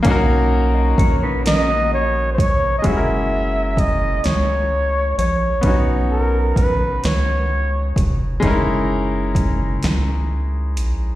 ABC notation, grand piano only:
X:1
M:6/8
L:1/8
Q:3/8=43
K:B
V:1 name="Grand piano"
[A,CDFA]6 | [G,CEFGA]6 | [B,CDFc]6 | [G,CDEA]6 |]